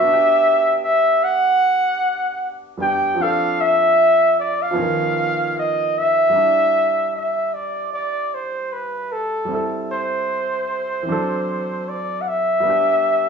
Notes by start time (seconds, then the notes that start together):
Already playing: E5
0.01 B3 D4
0.07 F#4
0.13 G4
0.84 E5
1.24 F#5
2.77 G3 B3 D4
2.81 G4 G5
3.14 F3 C4
3.20 D4 A4 F5
3.61 E5
4.39 D5
4.62 F5
4.71 F3 B3
4.75 D#3 C#4
4.80 A#4
5.59 D#5
5.98 E5
6.30 G3 D4
6.36 E4 D5
7.16 E5
7.54 D5
7.94 D5
8.34 C5
8.73 B4
9.12 A4
9.45 G3 C4
9.51 E4 A4
9.91 C5
11.03 E3 C4
11.09 F#3 D4 A4
11.89 D5
12.21 F#5
12.28 E5
12.60 G3 B3
12.67 D4 G4